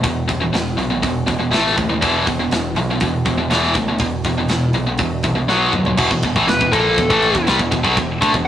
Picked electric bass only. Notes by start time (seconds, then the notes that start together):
0.04 E1
0.53 E1
0.78 B1
1.03 E1
1.28 E1
1.51 A1
1.78 D#2
2.02 E1
2.51 E1
2.75 B1
3.01 E1
3.26 E1
3.49 E1
3.75 D2
4.00 E1
4.49 E1
4.73 B1
4.99 E1
5.24 C2
5.49 B1
5.73 D#2
5.98 E1
6.11 E1
6.23 E1
6.36 A1
6.50 E1
6.61 E1
6.73 A#1
6.98 E1
7.10 A1
7.35 E1
7.49 C2
7.60 E1
7.72 E1
7.84 B1
7.97 E1
8.22 D2
8.34 E1